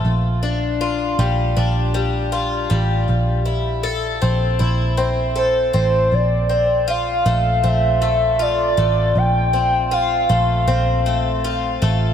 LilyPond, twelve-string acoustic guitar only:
\new Staff \with { instrumentName = "Twelve-string acoustic guitar" } { \time 4/4 \key bes \lydian \tempo 4 = 79 r8 d'8 f'8 g8 d'8 g8 f'8 g8 | r8 e'8 a'8 c'8 e'8 c'8 a'8 c'8 | r8 c'8 f'8 a8 c'8 a8 f'8 a8~ | a8 c'8 f'8 a8 c'8 a8 f'8 a8 | }